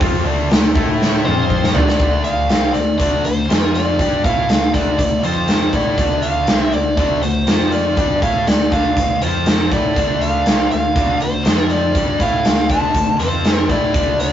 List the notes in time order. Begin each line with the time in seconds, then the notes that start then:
0.00 F2 F3 C4 F4, kick, open hi-hat
0.25 D2 D3 A3 D4
0.49 D2 D3 A3, snare, open hi-hat
0.74 A2 A3 E4 A4, kick
1.02 snare
1.24 F2 F3 C4 F4 C5, mid tom
1.50 kick
1.64 snare
1.74 D2 D3 A3 D4 D5, floor tom
1.88 snare
1.99 D2 D3 A3 D4, kick, closed hi-hat
2.24 F5, closed hi-hat
2.49 C2 C3 G3 C4, snare, closed hi-hat
2.73 D2 D3 A3 D5, closed hi-hat
2.98 D2 D3 A3 D4 D5, kick, closed hi-hat
3.24 D2 D3 A3 C5, closed hi-hat
3.48 F2 F3 C4 F4, snare, closed hi-hat
3.75 D5, closed hi-hat
3.99 G2 G3 D4 G4, kick, closed hi-hat
4.24 A2 A3 E4 A4 F5, kick, closed hi-hat
4.49 D2 D3 A3, snare, closed hi-hat
4.74 D2 D3 A3 D4 D5, kick, closed hi-hat
4.99 D2 D3 A3 D5, kick, closed hi-hat
5.23 F2 F3 C4 F4 C5, closed hi-hat
5.48 snare, closed hi-hat
5.73 A2 A3 E4 A4 D5, kick, closed hi-hat
5.97 D2 D3 A3 D4, kick, closed hi-hat
6.22 F5, closed hi-hat
6.47 C2 C3 G3 C4, snare, closed hi-hat
6.60 E5
6.72 D2 D3 A3 D5, closed hi-hat
6.97 D2 D3 A3 D4 D5, kick, closed hi-hat
7.23 D2 D3 A3 C5, closed hi-hat
7.47 F2 F3 C4 F4, snare, closed hi-hat
7.72 D5, closed hi-hat
7.96 G2 G3 D4 G4, kick, closed hi-hat
8.22 A2 A3 E4 A4 F5, kick, closed hi-hat
8.47 D2 D3 A3 D5, snare, closed hi-hat
8.71 D2 D3 A3 D4 F5, kick, closed hi-hat
8.96 D2 D3 A3, kick, closed hi-hat
9.21 F2 F3 C4 F4 C5, closed hi-hat
9.46 snare, closed hi-hat
9.71 A2 A3 E4 A4 D5, kick, closed hi-hat
9.96 D2 D3 A3 D4, kick, closed hi-hat
10.21 F5, closed hi-hat
10.46 C2 C3 G3 C4, snare, closed hi-hat
10.71 D2 D3 A3 F5, closed hi-hat
10.95 D2 D3 A3 D4, kick, closed hi-hat
11.20 D2 D3 A3 C5, closed hi-hat
11.45 F2 F3 C4 F4, snare, closed hi-hat
11.70 D5, closed hi-hat
11.95 G2 G3 D4 G4, kick, closed hi-hat
12.19 A2 A3 E4 A4 F5, kick, closed hi-hat
12.44 D2 D3 A3, snare, closed hi-hat
12.69 D2 D3 A3 D4 A5, kick, closed hi-hat
12.94 D2 D3 A3, kick, closed hi-hat
13.19 F2 F3 C4 F4 C5, closed hi-hat
13.45 snare, closed hi-hat
13.69 A2 A3 E4 A4 D5, kick, closed hi-hat
13.94 D2 D3 A3 D4, kick, closed hi-hat
14.20 D5, closed hi-hat